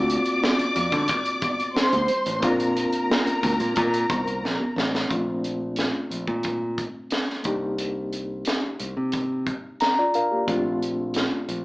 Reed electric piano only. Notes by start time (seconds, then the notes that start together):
Already playing: A#3 C4 F4 F#4
2.40 A#3 C4 D4
2.44 F4
5.09 A3 C4 D4 F4
7.43 A#3 D4 D#4 G4
9.81 A#5
9.99 F4 D5
10.15 D4 A#4 F5
10.31 A#3 G4
10.46 A3 C4 D4 F4